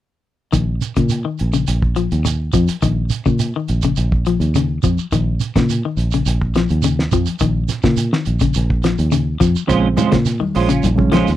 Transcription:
0.52 fingered electric bass A#1, clean electric guitar D#3, kick, closed hi-hat, shekere
0.81 closed hi-hat, shekere
0.96 fingered electric bass A#2, clean electric guitar C#3, kick, closed hi-hat, shekere
1.09 closed hi-hat, shekere
1.25 clean electric guitar D#3
1.38 fingered electric bass A#1, closed hi-hat, shekere
1.53 clean electric guitar C#3, closed hi-hat, shekere
1.67 fingered electric bass A#1, closed hi-hat, shekere
1.82 kick
1.96 clean electric guitar F3, closed hi-hat, shekere
2.12 fingered electric bass D#2, closed hi-hat, shekere
2.25 muted clean electric guitar stroke, closed hi-hat, shekere
2.53 fingered electric bass F2, clean electric guitar F3, kick, closed hi-hat, shekere
2.68 muted fingered electric bass stroke, closed hi-hat, shekere
2.82 fingered electric bass A#1, clean electric guitar D#3, kick, closed hi-hat, shekere
3.10 closed hi-hat, shekere
3.26 fingered electric bass A#2, clean electric guitar C#3, kick, shekere
3.39 closed hi-hat, shekere
3.56 clean electric guitar D#3
3.68 fingered electric bass A#1, closed hi-hat, shekere
3.82 clean electric guitar C#3, kick, closed hi-hat, shekere
3.96 fingered electric bass A#1, closed hi-hat, shekere
4.12 kick
4.26 clean electric guitar F3, closed hi-hat, shekere
4.40 fingered electric bass D#2, closed hi-hat, shekere
4.55 clean electric guitar C#3, closed hi-hat, shekere
4.83 fingered electric bass F2, clean electric guitar F3, kick, closed hi-hat, shekere
4.97 muted fingered electric bass stroke, shekere
5.12 fingered electric bass A#1, clean electric guitar D#3, kick, closed hi-hat, shekere
5.40 closed hi-hat, shekere
5.56 fingered electric bass A#2, clean electric guitar C#3, kick, snare, closed hi-hat, shekere
5.69 closed hi-hat, shekere
5.85 clean electric guitar D#3
5.97 fingered electric bass A#1, closed hi-hat, shekere
6.11 clean electric guitar C#3, closed hi-hat, shekere
6.26 fingered electric bass A#1, closed hi-hat, shekere
6.42 kick
6.54 clean electric guitar F3, snare, closed hi-hat, shekere
6.69 fingered electric bass D#2, closed hi-hat, shekere
6.82 clean electric guitar C#3, closed hi-hat, shekere
6.99 snare
7.12 fingered electric bass F2, clean electric guitar F3, kick, closed hi-hat, shekere
7.26 muted fingered electric bass stroke, closed hi-hat, shekere
7.39 fingered electric bass A#1, clean electric guitar D#3, kick, closed hi-hat, shekere
7.69 snare, closed hi-hat, shekere
7.83 fingered electric bass A#2, clean electric guitar C#3, kick, snare, shekere
7.97 closed hi-hat, shekere
8.13 clean electric guitar D#3, snare
8.25 fingered electric bass A#1, closed hi-hat, shekere
8.40 clean electric guitar C#3, kick, closed hi-hat, shekere
8.54 fingered electric bass A#1, closed hi-hat, shekere
8.70 kick
8.83 clean electric guitar F3, snare, closed hi-hat, shekere
8.98 fingered electric bass D#2, closed hi-hat, shekere
9.12 clean electric guitar C#3, closed hi-hat, shekere
9.40 fingered electric bass F2, clean electric guitar F3, kick, snare, closed hi-hat, shekere
9.56 muted fingered electric bass stroke, shekere
9.67 fingered electric bass A#1, reed electric piano C#3 F3 G#3 C4, clean electric guitar G#3 C#4 F4 C5, muted clean electric guitar stroke, kick, closed hi-hat, shekere
9.97 clean electric guitar G#3 C#4 F4 C5, closed hi-hat, high conga, shekere
10.12 fingered electric bass A#2, clean electric guitar C#3, kick, snare, closed hi-hat, shekere
10.25 snare, closed hi-hat, shekere
10.40 clean electric guitar D#3, high conga
10.55 fingered electric bass A#1, clean electric guitar G#3 C#4 F4 C5, open hi-hat, shekere
10.69 clean electric guitar C#3 C#4 F4, muted clean electric guitar stroke, closed hi-hat, shekere
10.83 fingered electric bass A#1, closed hi-hat, high conga, shekere
10.96 reed electric piano C#3 F3 G#3 C#4, kick, high conga
11.12 clean electric guitar F3 G#3 C#4 F4 C5, snare, closed hi-hat, high conga, shekere
11.27 fingered electric bass D#2, snare, closed hi-hat, shekere

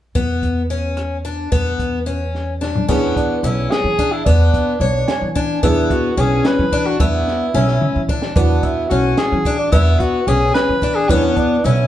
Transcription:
0.15 upright bass E2, twelve-string acoustic guitar B3, kick, closed hi-hat
0.43 kick, closed hi-hat
0.70 twelve-string acoustic guitar C#4, closed hi-hat
0.97 cross-stick, closed hi-hat
1.25 twelve-string acoustic guitar D4, closed hi-hat
1.52 upright bass E2, twelve-string acoustic guitar B3, kick, closed hi-hat
1.79 kick, closed hi-hat
2.06 twelve-string acoustic guitar C#4, closed hi-hat
2.35 snare
2.61 twelve-string acoustic guitar D4, snare
2.76 floor tom
2.88 upright bass E2, grand piano E3 B3 D4 G#4, twelve-string acoustic guitar B3, tenor saxophone C#4, kick, crash
3.16 tenor saxophone D4, kick, closed hi-hat
3.43 upright bass B1, twelve-string acoustic guitar C#4, tenor saxophone E4, closed hi-hat
3.71 tenor saxophone G#4, snare, closed hi-hat
3.84 upright bass E3
3.99 twelve-string acoustic guitar D4, kick, closed hi-hat
4.12 tenor saxophone E4
4.25 upright bass E2, twelve-string acoustic guitar B3, tenor saxophone D4, kick, closed hi-hat
4.54 kick, closed hi-hat
4.80 upright bass B1, twelve-string acoustic guitar C#5, closed hi-hat
5.08 grand piano G#5, snare, closed hi-hat
5.22 upright bass E3
5.35 twelve-string acoustic guitar D4, kick, closed hi-hat
5.63 upright bass E2, grand piano E3 B3 D4 G#4, twelve-string acoustic guitar B3, tenor saxophone E4, kick, closed hi-hat
5.90 tenor saxophone F#4, kick, closed hi-hat
6.17 upright bass B1, twelve-string acoustic guitar C#4, tenor saxophone G#4, closed hi-hat
6.45 tenor saxophone B4, snare, closed hi-hat
6.59 upright bass E3
6.72 twelve-string acoustic guitar D4, kick, closed hi-hat
6.87 tenor saxophone F#4
7.00 upright bass E2, twelve-string acoustic guitar B3, tenor saxophone E4, kick, closed hi-hat
7.28 snare
7.54 upright bass B1, twelve-string acoustic guitar C#4, snare
7.68 snare
7.81 mid tom
7.96 upright bass E3
8.09 twelve-string acoustic guitar D4, kick
8.22 snare
8.35 upright bass E2, grand piano E3 B3 D4 F#4, twelve-string acoustic guitar B3, tenor saxophone D4, kick, closed hi-hat
8.63 tenor saxophone E4, kick, closed hi-hat
8.89 upright bass B1, twelve-string acoustic guitar C#4, tenor saxophone F#4, closed hi-hat
9.17 tenor saxophone G#4, snare, closed hi-hat
9.32 upright bass E3
9.45 twelve-string acoustic guitar D4, kick, closed hi-hat
9.59 tenor saxophone D4
9.72 upright bass E2, twelve-string acoustic guitar B3, tenor saxophone E4, kick, closed hi-hat
10.00 tenor saxophone F#4, kick, closed hi-hat
10.27 upright bass B1, twelve-string acoustic guitar C#4, tenor saxophone G#4, closed hi-hat
10.54 tenor saxophone B4, snare, closed hi-hat
10.69 upright bass E3
10.82 twelve-string acoustic guitar D4, kick, closed hi-hat
10.95 tenor saxophone G#4
11.09 upright bass E2, grand piano E3 B3 D4 E4, twelve-string acoustic guitar B3, tenor saxophone C#4, kick, closed hi-hat
11.37 tenor saxophone D4, kick, closed hi-hat
11.64 upright bass B1, twelve-string acoustic guitar C#4, tenor saxophone E4, snare, closed hi-hat

